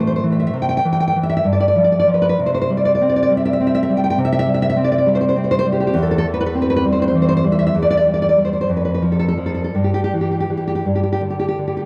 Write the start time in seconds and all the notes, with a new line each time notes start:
Already playing: A2 E3 A3 C4
0.00 C5
0.07 C5
0.16 C5
0.24 E3
0.32 E5
0.39 E5
0.47 E5
0.54 C3
0.62 G5
0.69 G5
0.77 G5
0.85 E3
0.93 G5
1.00 G5
1.08 G5
1.16 E3
1.23 E5
1.29 E5
1.37 E5
1.44 G2
1.53 D5
1.60 D5
1.68 D5
1.76 F3
1.84 D5
1.92 D5
1.99 D5
2.07 F3
2.14 B4
2.22 B4
2.29 B4
2.39 C3
2.46 C5
2.54 C5
2.62 C5
2.70 G3
2.77 D5
2.85 D5
2.95 D5
3.01 C4
3.09 D5
3.16 D5
3.23 D5
3.30 G3
3.37 E5
3.45 E5
3.53 E5
3.60 C4
3.67 E5
3.75 E5
3.83 E5
3.89 G3
3.97 G5
4.04 G5
4.10 G5
4.18 C3
4.25 E5
4.32 E5
4.39 E5
4.46 G3
4.54 E5
4.62 E5
4.69 E5
4.76 C4
4.84 D5
4.92 D5
4.98 D5
5.06 G3
5.15 C5
5.21 C5
5.29 C5
5.36 C4
5.44 C5
5.51 C5
5.59 C5
5.65 G3
5.72 G4
5.80 G4
5.87 G4
5.94 E2
6.02 A4
6.11 A4
6.18 A4
6.26 E3
6.34 B4
6.41 B4
6.46 B4
6.55 C4
6.62 B4
6.70 B4
6.76 B4
6.85 G3
6.92 C5
7.02 C5
7.08 C5
7.15 E3
7.22 C5
7.29 C5
7.37 C5
7.44 G3
7.52 E5
7.59 E5
7.67 E5
7.75 E2
7.82 D5
7.90 D5
7.97 D5
8.07 G3
8.14 D5
8.22 D5
8.29 D5
8.37 G3
8.45 C5
8.53 C5
8.61 C5
8.69 F2
8.76 B4
8.85 B4
8.94 B4
9.02 F3
9.12 A4
9.19 A4
9.28 A4
9.38 F3
9.46 A4
9.54 A4
9.64 A4
9.75 G2
9.84 G4
9.94 G4
10.04 G4
10.14 E3
10.21 G4
10.31 G4
10.40 G4
10.50 E3
10.57 G4
10.68 G4
10.75 G4
10.85 G2
10.95 G4
11.03 G4
11.12 G4
11.21 D3
11.30 G4
11.39 G4
11.48 G4
11.58 D3
11.68 G4
11.77 G4